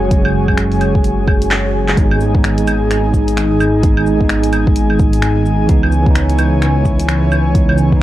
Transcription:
Already playing: detuned saw bass F#1, tine electric piano F#3 G#3 C#4, analog synth pad F#4 G#4 C#5 G#5, synth texture G#4
0.09 tine electric piano F#3 G#3, kick, closed hi-hat
0.13 tine electric piano C#4
0.25 claves
0.45 tine electric piano F#3 G#3, kick, claves
0.53 tine electric piano C#4
0.57 finger snap, closed hi-hat
0.72 closed hi-hat
0.81 closed hi-hat, claves
0.95 kick
1.04 closed hi-hat
1.28 kick, claves
1.42 closed hi-hat
1.51 finger snap, clap, closed hi-hat
1.89 clap, closed hi-hat
1.96 detuned saw bass G#1, tine electric piano G#3 B3 D#4, analog synth pad D#4 G#4 G#5, kick, closed hi-hat
2.11 claves
2.21 cabasa
2.31 tine electric piano G#3
2.35 tine electric piano B3, kick
2.39 tine electric piano D#4
2.44 finger snap, closed hi-hat
2.58 closed hi-hat
2.67 closed hi-hat, cabasa, claves
2.91 finger snap, closed hi-hat
3.14 kick, cabasa
3.28 closed hi-hat
3.37 finger snap, closed hi-hat
3.60 cabasa, claves
3.81 tine electric piano G#3 B3, kick, closed hi-hat
3.86 tine electric piano D#4
3.97 claves
4.07 cabasa
4.17 tine electric piano G#3 B3
4.21 tine electric piano D#4, kick
4.29 finger snap, closed hi-hat
4.44 closed hi-hat
4.53 closed hi-hat, cabasa, claves
4.67 kick
4.76 closed hi-hat
4.90 claves
4.99 kick, cabasa
5.13 closed hi-hat
5.22 finger snap, closed hi-hat
5.46 cabasa
5.67 detuned saw bass C#2, tine electric piano E3 B3, analog synth pad E3 C#5, kick, closed hi-hat
5.71 tine electric piano D#4
5.83 claves
5.92 cabasa
6.02 tine electric piano E3 B3
6.06 kick
6.10 tine electric piano D#4
6.15 finger snap, closed hi-hat
6.30 closed hi-hat
6.39 closed hi-hat, cabasa, claves
6.62 finger snap, closed hi-hat
6.85 kick, cabasa
6.99 closed hi-hat
7.08 finger snap, closed hi-hat
7.32 cabasa, claves
7.53 tine electric piano E3 B3, kick, closed hi-hat
7.57 tine electric piano D#4
7.69 claves
7.78 cabasa
7.88 tine electric piano E3 B3
7.93 tine electric piano D#4, kick

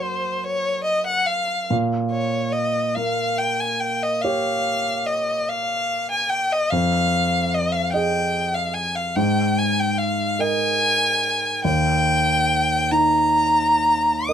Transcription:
Already playing: grand piano F#2 F#4 C5
0.02 violin C5
0.44 violin C#5
0.84 violin D#5
1.07 violin F#5
1.26 violin F5
1.70 grand piano A#2
2.12 violin C#5
2.52 violin D#5
2.95 grand piano A#3, violin F5
3.38 violin G5
3.60 violin G#5
3.80 violin G5
4.03 violin D#5
4.22 grand piano G4 C#5, violin F5
5.06 violin D#5
5.49 violin F5
6.11 violin G#5
6.30 violin G5
6.52 violin D#5
6.70 grand piano F2, violin F5
7.54 violin D#5
7.72 violin F5
7.93 grand piano G#4 D#5, violin G5
8.54 violin F5
8.74 violin G#5
8.96 violin F5
9.16 grand piano G#2, violin G5
9.58 violin G#5
9.80 violin G5
9.98 violin F5
10.39 grand piano A#4 D#5, violin G#5
11.64 grand piano D#2, violin G5
12.91 grand piano D#4, violin A#5
14.27 grand piano A#4 D#5, violin D#6

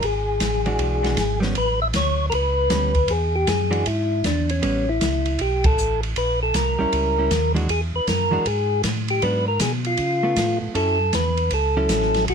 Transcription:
0.02 tonewheel organ G#1 G#4, kick, ride
0.40 tonewheel organ A1, kick, snare, hi-hat pedal, ride
0.66 hollow-body jazz guitar E3 G#3 D4 F#4, ride
0.79 tonewheel organ B1, kick, ride
1.03 hollow-body jazz guitar E3 G#3 D4 F#4, snare, ride
1.17 tonewheel organ G#1, kick, snare, hi-hat pedal, ride
1.40 hollow-body jazz guitar G3 B3 C#4, snare
1.55 tonewheel organ A1 B4, kick, ride
1.82 tonewheel organ E5
1.93 tonewheel organ D2 C#5, kick, snare, hi-hat pedal, ride
2.30 tonewheel organ C#2 A#4, kick, ride
2.35 tonewheel organ B4
2.70 tonewheel organ D2, hollow-body jazz guitar G3 B3 C#4, kick, snare, hi-hat pedal, ride
2.95 kick, ride
3.08 tonewheel organ E2 G#4, kick, ride
3.35 tonewheel organ G4
3.47 tonewheel organ F#2 G#4, kick, snare, hi-hat pedal, ride
3.71 hollow-body jazz guitar E3 G#3 D4 F#4, ride
3.86 tonewheel organ G#2 E4, kick, ride
4.24 tonewheel organ E2 D4, kick, snare, hi-hat pedal, ride
4.49 tonewheel organ C#4, ride
4.62 tonewheel organ A1, hollow-body jazz guitar G3 B3 C#4, kick, ride
4.89 tonewheel organ E4
5.01 tonewheel organ C#2, kick, snare, hi-hat pedal, ride
5.25 ride
5.39 tonewheel organ B1 G4, kick, ride
5.64 tonewheel organ A4, kick, ride
5.78 tonewheel organ A1, hi-hat pedal
6.03 ride
6.16 tonewheel organ A#1 B4, kick, ride
6.43 tonewheel organ A4
6.54 tonewheel organ C2 A#4, kick, snare, hi-hat pedal, ride
6.79 tonewheel organ C2, hollow-body jazz guitar G3 C#4 E4
6.93 tonewheel organ C#2, kick, ride
7.18 hollow-body jazz guitar G3 C#4 E4
7.31 tonewheel organ D#2, kick, snare, hi-hat pedal, ride
7.54 hollow-body jazz guitar E3 G#3 D4 F#4, ride
7.69 tonewheel organ E2 G#4, kick, ride
7.94 tonewheel organ E2 B4
8.07 tonewheel organ F#2 A#4, kick, snare, hi-hat pedal, ride
8.31 tonewheel organ F#2, hollow-body jazz guitar E3 G#3 D4 F#4
8.46 tonewheel organ G#2 G#4, kick, ride
8.83 tonewheel organ A2, kick, snare, hi-hat pedal, ride
9.08 tonewheel organ G4, ride
9.22 tonewheel organ G#2 B4, hollow-body jazz guitar F#3 B3 D4, kick, ride
9.48 tonewheel organ A#4
9.60 tonewheel organ B2 G#4, kick, snare, hi-hat pedal, ride
9.85 tonewheel organ F4, ride
9.97 tonewheel organ C#3, kick, ride
10.23 hollow-body jazz guitar A3 B3 F4
10.36 tonewheel organ A2, kick, snare, hi-hat pedal, ride
10.62 tonewheel organ A2
10.74 tonewheel organ F#2 A4, hollow-body jazz guitar F#3 C#4 E4 A4, kick, ride
11.13 tonewheel organ E2 B4, kick, snare, hi-hat pedal, ride
11.37 ride
11.51 tonewheel organ C#2 A4, kick, ride
11.77 hollow-body jazz guitar F#3 C#4 E4 A4
11.89 tonewheel organ A1, kick, snare, hi-hat pedal, ride
12.02 snare
12.14 snare, ride
12.28 tonewheel organ B1 F#4, kick, ride

